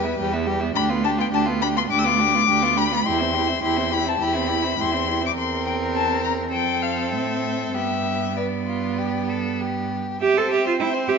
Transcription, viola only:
0, 0, Header, 1, 2, 480
1, 0, Start_track
1, 0, Key_signature, 0, "major"
1, 0, Tempo, 576369
1, 633, Time_signature, 4, 2, 24, 8
1, 5439, Tempo, 613497
1, 8319, Tempo, 580271
1, 9121, End_track
2, 0, Start_track
2, 0, Title_t, "Viola"
2, 0, Program_c, 0, 41
2, 37, Note_on_c, 0, 59, 49
2, 149, Note_off_c, 0, 59, 0
2, 154, Note_on_c, 0, 55, 54
2, 280, Note_on_c, 0, 59, 49
2, 292, Note_off_c, 0, 55, 0
2, 390, Note_on_c, 0, 55, 53
2, 403, Note_off_c, 0, 59, 0
2, 519, Note_on_c, 0, 59, 52
2, 531, Note_off_c, 0, 55, 0
2, 625, Note_off_c, 0, 59, 0
2, 630, Note_on_c, 0, 62, 59
2, 750, Note_on_c, 0, 59, 52
2, 762, Note_off_c, 0, 62, 0
2, 868, Note_on_c, 0, 62, 53
2, 880, Note_off_c, 0, 59, 0
2, 988, Note_on_c, 0, 59, 53
2, 1000, Note_off_c, 0, 62, 0
2, 1104, Note_off_c, 0, 59, 0
2, 1109, Note_on_c, 0, 62, 55
2, 1230, Note_on_c, 0, 59, 48
2, 1243, Note_off_c, 0, 62, 0
2, 1354, Note_on_c, 0, 62, 50
2, 1366, Note_off_c, 0, 59, 0
2, 1471, Note_on_c, 0, 59, 49
2, 1484, Note_off_c, 0, 62, 0
2, 1582, Note_off_c, 0, 59, 0
2, 1587, Note_on_c, 0, 62, 58
2, 1701, Note_on_c, 0, 59, 52
2, 1714, Note_off_c, 0, 62, 0
2, 1829, Note_on_c, 0, 62, 54
2, 1842, Note_off_c, 0, 59, 0
2, 1950, Note_on_c, 0, 59, 49
2, 1963, Note_off_c, 0, 62, 0
2, 2068, Note_off_c, 0, 59, 0
2, 2073, Note_on_c, 0, 62, 55
2, 2186, Note_on_c, 0, 59, 48
2, 2198, Note_off_c, 0, 62, 0
2, 2306, Note_on_c, 0, 62, 51
2, 2318, Note_off_c, 0, 59, 0
2, 2428, Note_on_c, 0, 59, 51
2, 2440, Note_off_c, 0, 62, 0
2, 2543, Note_off_c, 0, 59, 0
2, 2548, Note_on_c, 0, 64, 56
2, 2670, Note_on_c, 0, 60, 50
2, 2682, Note_off_c, 0, 64, 0
2, 2787, Note_on_c, 0, 64, 49
2, 2799, Note_off_c, 0, 60, 0
2, 2909, Note_on_c, 0, 60, 50
2, 2921, Note_off_c, 0, 64, 0
2, 3017, Note_off_c, 0, 60, 0
2, 3022, Note_on_c, 0, 64, 54
2, 3141, Note_on_c, 0, 60, 46
2, 3154, Note_off_c, 0, 64, 0
2, 3267, Note_on_c, 0, 64, 47
2, 3279, Note_off_c, 0, 60, 0
2, 3383, Note_on_c, 0, 60, 48
2, 3396, Note_off_c, 0, 64, 0
2, 3499, Note_off_c, 0, 60, 0
2, 3504, Note_on_c, 0, 64, 53
2, 3627, Note_on_c, 0, 60, 48
2, 3639, Note_off_c, 0, 64, 0
2, 3742, Note_on_c, 0, 64, 48
2, 3755, Note_off_c, 0, 60, 0
2, 3866, Note_on_c, 0, 60, 44
2, 3879, Note_off_c, 0, 64, 0
2, 3985, Note_off_c, 0, 60, 0
2, 3990, Note_on_c, 0, 64, 48
2, 4111, Note_on_c, 0, 60, 44
2, 4123, Note_off_c, 0, 64, 0
2, 4236, Note_on_c, 0, 64, 47
2, 4248, Note_off_c, 0, 60, 0
2, 4355, Note_on_c, 0, 60, 47
2, 4368, Note_off_c, 0, 64, 0
2, 4474, Note_off_c, 0, 60, 0
2, 4480, Note_on_c, 0, 60, 57
2, 5411, Note_off_c, 0, 60, 0
2, 5445, Note_on_c, 0, 60, 53
2, 6392, Note_on_c, 0, 59, 44
2, 6403, Note_off_c, 0, 60, 0
2, 6880, Note_off_c, 0, 59, 0
2, 6883, Note_on_c, 0, 59, 48
2, 8137, Note_off_c, 0, 59, 0
2, 8318, Note_on_c, 0, 60, 59
2, 9121, Note_off_c, 0, 60, 0
2, 9121, End_track
0, 0, End_of_file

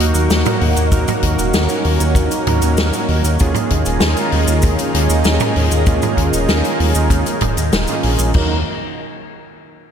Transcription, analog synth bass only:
0, 0, Header, 1, 2, 480
1, 0, Start_track
1, 0, Key_signature, -6, "minor"
1, 0, Tempo, 618557
1, 716, Time_signature, 4, 2, 24, 8
1, 7693, End_track
2, 0, Start_track
2, 0, Title_t, "Analog synth bass"
2, 0, Program_c, 0, 38
2, 0, Note_on_c, 0, 39, 98
2, 102, Note_off_c, 0, 39, 0
2, 116, Note_on_c, 0, 39, 85
2, 222, Note_off_c, 0, 39, 0
2, 237, Note_on_c, 0, 39, 102
2, 342, Note_off_c, 0, 39, 0
2, 477, Note_on_c, 0, 39, 98
2, 582, Note_off_c, 0, 39, 0
2, 597, Note_on_c, 0, 39, 81
2, 702, Note_off_c, 0, 39, 0
2, 714, Note_on_c, 0, 39, 105
2, 820, Note_off_c, 0, 39, 0
2, 955, Note_on_c, 0, 39, 94
2, 1061, Note_off_c, 0, 39, 0
2, 1076, Note_on_c, 0, 27, 81
2, 1181, Note_off_c, 0, 27, 0
2, 1196, Note_on_c, 0, 39, 103
2, 1301, Note_off_c, 0, 39, 0
2, 1435, Note_on_c, 0, 39, 96
2, 1541, Note_off_c, 0, 39, 0
2, 1556, Note_on_c, 0, 39, 82
2, 1661, Note_off_c, 0, 39, 0
2, 1669, Note_on_c, 0, 39, 106
2, 1778, Note_off_c, 0, 39, 0
2, 1917, Note_on_c, 0, 39, 98
2, 2022, Note_off_c, 0, 39, 0
2, 2036, Note_on_c, 0, 39, 84
2, 2142, Note_off_c, 0, 39, 0
2, 2155, Note_on_c, 0, 39, 104
2, 2261, Note_off_c, 0, 39, 0
2, 2396, Note_on_c, 0, 39, 96
2, 2501, Note_off_c, 0, 39, 0
2, 2516, Note_on_c, 0, 39, 83
2, 2621, Note_off_c, 0, 39, 0
2, 2644, Note_on_c, 0, 39, 104
2, 2745, Note_off_c, 0, 39, 0
2, 2879, Note_on_c, 0, 39, 98
2, 2983, Note_off_c, 0, 39, 0
2, 2996, Note_on_c, 0, 27, 82
2, 3101, Note_off_c, 0, 27, 0
2, 3116, Note_on_c, 0, 39, 105
2, 3221, Note_off_c, 0, 39, 0
2, 3356, Note_on_c, 0, 39, 97
2, 3461, Note_off_c, 0, 39, 0
2, 3476, Note_on_c, 0, 39, 84
2, 3581, Note_off_c, 0, 39, 0
2, 3596, Note_on_c, 0, 39, 106
2, 3701, Note_off_c, 0, 39, 0
2, 3836, Note_on_c, 0, 39, 97
2, 3941, Note_off_c, 0, 39, 0
2, 3956, Note_on_c, 0, 39, 83
2, 4061, Note_off_c, 0, 39, 0
2, 4077, Note_on_c, 0, 39, 104
2, 4182, Note_off_c, 0, 39, 0
2, 4317, Note_on_c, 0, 39, 97
2, 4422, Note_off_c, 0, 39, 0
2, 4436, Note_on_c, 0, 39, 84
2, 4542, Note_off_c, 0, 39, 0
2, 4554, Note_on_c, 0, 39, 107
2, 4660, Note_off_c, 0, 39, 0
2, 4791, Note_on_c, 0, 39, 98
2, 4899, Note_off_c, 0, 39, 0
2, 4916, Note_on_c, 0, 27, 81
2, 5021, Note_off_c, 0, 27, 0
2, 5037, Note_on_c, 0, 39, 104
2, 5142, Note_off_c, 0, 39, 0
2, 5277, Note_on_c, 0, 39, 96
2, 5382, Note_off_c, 0, 39, 0
2, 5396, Note_on_c, 0, 39, 85
2, 5502, Note_off_c, 0, 39, 0
2, 5511, Note_on_c, 0, 39, 106
2, 5619, Note_off_c, 0, 39, 0
2, 5754, Note_on_c, 0, 27, 97
2, 5860, Note_off_c, 0, 27, 0
2, 5877, Note_on_c, 0, 39, 82
2, 5982, Note_off_c, 0, 39, 0
2, 5997, Note_on_c, 0, 27, 104
2, 6102, Note_off_c, 0, 27, 0
2, 6237, Note_on_c, 0, 34, 94
2, 6342, Note_off_c, 0, 34, 0
2, 6357, Note_on_c, 0, 34, 85
2, 6462, Note_off_c, 0, 34, 0
2, 6478, Note_on_c, 0, 39, 101
2, 6701, Note_off_c, 0, 39, 0
2, 7693, End_track
0, 0, End_of_file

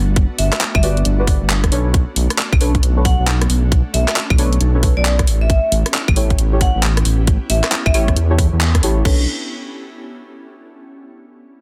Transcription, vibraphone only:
0, 0, Header, 1, 2, 480
1, 0, Start_track
1, 0, Key_signature, 2, "minor"
1, 0, Tempo, 444444
1, 177, Time_signature, 4, 2, 24, 8
1, 12541, End_track
2, 0, Start_track
2, 0, Title_t, "Vibraphone"
2, 0, Program_c, 0, 11
2, 416, Note_on_c, 0, 76, 93
2, 594, Note_off_c, 0, 76, 0
2, 808, Note_on_c, 0, 76, 88
2, 865, Note_off_c, 0, 76, 0
2, 897, Note_on_c, 0, 76, 73
2, 995, Note_off_c, 0, 76, 0
2, 3293, Note_on_c, 0, 78, 93
2, 3472, Note_off_c, 0, 78, 0
2, 4254, Note_on_c, 0, 76, 94
2, 4433, Note_off_c, 0, 76, 0
2, 5367, Note_on_c, 0, 74, 100
2, 5500, Note_off_c, 0, 74, 0
2, 5847, Note_on_c, 0, 76, 95
2, 6176, Note_off_c, 0, 76, 0
2, 7137, Note_on_c, 0, 78, 95
2, 7314, Note_off_c, 0, 78, 0
2, 8099, Note_on_c, 0, 76, 92
2, 8275, Note_off_c, 0, 76, 0
2, 8485, Note_on_c, 0, 76, 88
2, 8544, Note_off_c, 0, 76, 0
2, 8574, Note_on_c, 0, 76, 72
2, 8673, Note_off_c, 0, 76, 0
2, 12541, End_track
0, 0, End_of_file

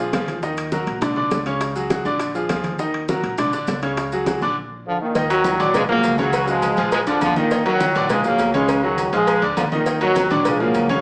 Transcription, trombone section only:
0, 0, Header, 1, 2, 480
1, 0, Start_track
1, 0, Key_signature, -6, "minor"
1, 0, Tempo, 294985
1, 692, Time_signature, 4, 2, 24, 8
1, 17919, End_track
2, 0, Start_track
2, 0, Title_t, "Trombone section"
2, 0, Program_c, 0, 61
2, 7913, Note_on_c, 0, 53, 96
2, 7928, Note_on_c, 0, 50, 71
2, 8132, Note_off_c, 0, 53, 0
2, 8140, Note_off_c, 0, 50, 0
2, 8153, Note_on_c, 0, 51, 91
2, 8164, Note_on_c, 0, 46, 74
2, 8595, Note_off_c, 0, 51, 0
2, 8601, Note_off_c, 0, 46, 0
2, 8626, Note_on_c, 0, 54, 103
2, 8645, Note_on_c, 0, 51, 81
2, 9294, Note_off_c, 0, 54, 0
2, 9305, Note_off_c, 0, 51, 0
2, 9353, Note_on_c, 0, 56, 107
2, 9379, Note_on_c, 0, 53, 80
2, 9459, Note_off_c, 0, 56, 0
2, 9479, Note_off_c, 0, 53, 0
2, 9588, Note_on_c, 0, 58, 117
2, 9608, Note_on_c, 0, 54, 90
2, 10032, Note_off_c, 0, 58, 0
2, 10042, Note_off_c, 0, 54, 0
2, 10059, Note_on_c, 0, 54, 105
2, 10088, Note_on_c, 0, 49, 80
2, 10540, Note_off_c, 0, 54, 0
2, 10547, Note_on_c, 0, 56, 113
2, 10555, Note_off_c, 0, 49, 0
2, 10571, Note_on_c, 0, 53, 86
2, 11245, Note_off_c, 0, 56, 0
2, 11264, Note_on_c, 0, 56, 104
2, 11275, Note_off_c, 0, 53, 0
2, 11295, Note_on_c, 0, 53, 81
2, 11371, Note_off_c, 0, 56, 0
2, 11395, Note_off_c, 0, 53, 0
2, 11504, Note_on_c, 0, 53, 90
2, 11526, Note_on_c, 0, 50, 76
2, 11725, Note_off_c, 0, 53, 0
2, 11737, Note_off_c, 0, 50, 0
2, 11749, Note_on_c, 0, 53, 98
2, 11770, Note_on_c, 0, 50, 81
2, 11968, Note_off_c, 0, 53, 0
2, 11977, Note_on_c, 0, 51, 97
2, 11979, Note_off_c, 0, 50, 0
2, 11999, Note_on_c, 0, 46, 80
2, 12424, Note_off_c, 0, 51, 0
2, 12435, Note_off_c, 0, 46, 0
2, 12456, Note_on_c, 0, 54, 106
2, 12483, Note_on_c, 0, 51, 84
2, 13125, Note_off_c, 0, 54, 0
2, 13140, Note_off_c, 0, 51, 0
2, 13175, Note_on_c, 0, 56, 106
2, 13205, Note_on_c, 0, 53, 82
2, 13399, Note_off_c, 0, 56, 0
2, 13415, Note_off_c, 0, 53, 0
2, 13417, Note_on_c, 0, 58, 109
2, 13447, Note_on_c, 0, 54, 84
2, 13896, Note_off_c, 0, 58, 0
2, 13900, Note_on_c, 0, 56, 94
2, 13911, Note_off_c, 0, 54, 0
2, 13934, Note_on_c, 0, 49, 84
2, 14374, Note_on_c, 0, 54, 94
2, 14377, Note_off_c, 0, 56, 0
2, 14394, Note_off_c, 0, 49, 0
2, 14399, Note_on_c, 0, 51, 77
2, 14820, Note_off_c, 0, 54, 0
2, 14833, Note_off_c, 0, 51, 0
2, 14854, Note_on_c, 0, 56, 109
2, 14886, Note_on_c, 0, 53, 86
2, 15333, Note_off_c, 0, 56, 0
2, 15349, Note_off_c, 0, 53, 0
2, 15577, Note_on_c, 0, 53, 91
2, 15593, Note_on_c, 0, 50, 74
2, 15683, Note_off_c, 0, 53, 0
2, 15696, Note_off_c, 0, 50, 0
2, 15813, Note_on_c, 0, 51, 86
2, 15831, Note_on_c, 0, 46, 67
2, 16258, Note_off_c, 0, 51, 0
2, 16268, Note_off_c, 0, 46, 0
2, 16306, Note_on_c, 0, 54, 101
2, 16326, Note_on_c, 0, 51, 73
2, 16968, Note_off_c, 0, 54, 0
2, 16978, Note_off_c, 0, 51, 0
2, 17022, Note_on_c, 0, 56, 94
2, 17038, Note_on_c, 0, 53, 80
2, 17255, Note_off_c, 0, 56, 0
2, 17259, Note_on_c, 0, 58, 103
2, 17263, Note_off_c, 0, 53, 0
2, 17283, Note_on_c, 0, 54, 79
2, 17732, Note_off_c, 0, 54, 0
2, 17734, Note_off_c, 0, 58, 0
2, 17751, Note_on_c, 0, 54, 84
2, 17769, Note_on_c, 0, 49, 68
2, 17919, Note_off_c, 0, 49, 0
2, 17919, Note_off_c, 0, 54, 0
2, 17919, End_track
0, 0, End_of_file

